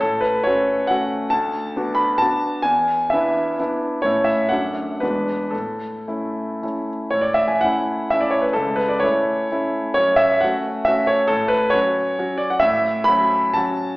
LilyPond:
\new Staff \with { instrumentName = "Grand piano" } { \time 3/4 \key a \major \tempo 4 = 131 << { a'8 b'8 cis''4 fis''4 | a''4. b''8 a''4 | gis''4 e''4 r4 | cis''8 e''8 fis''4 b'4 |
a'2~ a'8 r8 | cis''16 d''16 e''16 gis''16 fis''4 e''16 d''16 cis''16 b'16 | a'8 b'16 d''16 cis''2 | cis''8 e''8 fis''4 e''8 cis''8 |
a'8 b'8 cis''4. d''16 fis''16 | \key fis \dorian e''4 b''4 a''4 | } \\ { a,4 <a cis' fis'>4 <a cis' fis'>4 | d,4 <b d' fis'>4 <b d' fis'>4 | e,4 <b d' e'>4 <b d' e'>4 | <a, a cis' e'>4 <fis, a d' fis'>4 <e, gis d' fis'>4 |
a,4 <a cis' e'>4 <a cis' e'>4 | a,4 <a cis' e'>4 <a cis' e'>4 | cis,4 <a cis' e'>4 <a cis' e'>4 | fis,4 <a cis' fis'>4 <a cis' fis'>4 |
a,4 <fis cis' fis'>4 <fis cis' fis'>4 | a,4 <fis cis' fis'>4 <fis cis' fis'>4 | } >> }